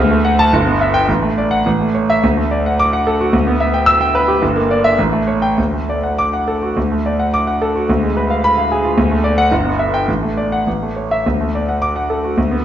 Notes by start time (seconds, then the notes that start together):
Already playing: D2
0.11 A3
0.25 F#5
0.39 A5
0.53 G1
0.67 B3
0.81 E5
0.94 G5
1.09 A1
1.22 A3
1.38 D5
1.51 F#5
1.66 A1
1.81 A3
1.94 C#5
2.10 E5
2.24 D2
2.37 A3
2.51 D5
2.66 F#5
2.80 D6
2.93 F#5
3.07 A4
3.21 F#4
3.33 D2
3.47 B3
3.60 E5
3.74 G5
3.86 E6
4.01 G5
4.15 B4
4.28 G4
4.42 G1
4.56 A#3
4.71 D5
4.84 E5
4.99 A1
5.13 A3
5.27 C#5
5.42 G5
5.58 D2
5.74 A3
5.89 D5
6.03 F#5
6.18 D6
6.33 F#5
6.48 A4
6.62 F#4
6.77 D2
6.92 A3
7.06 D5
7.19 F#5
7.34 D6
7.47 F#5
7.62 A4
7.75 F#4
7.90 D2
8.03 G#3
8.17 B4
8.30 F5
8.44 B5
8.58 F5
8.72 G#4
8.84 F4
8.98 D2
9.11 A3
9.24 D5
9.38 F#5
9.51 G1
9.65 B3
9.79 E5
9.94 G5
10.08 A1
10.23 A3
10.37 D5
10.52 F#5
10.67 A1
10.83 A3
10.96 C#5
11.11 E5
11.26 D2
11.41 A3
11.55 D5
11.69 F#5
11.82 D6
11.96 F#5
12.10 A4
12.24 F#4
12.38 D2
12.51 B3